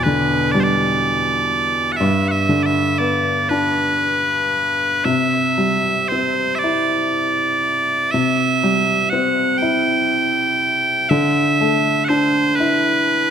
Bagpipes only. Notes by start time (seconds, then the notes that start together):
0.03 B4
0.51 D5
0.60 C5 D5
1.92 F#5
1.97 E5
2.28 E5 F#5
2.63 D5 E5
2.99 D5
3.49 B4
5.05 E5
6.08 C5
6.55 D5 E5
8.11 E5
9.10 F#5
9.58 G5
11.09 E5
12.05 F#5
12.09 C5
12.55 B4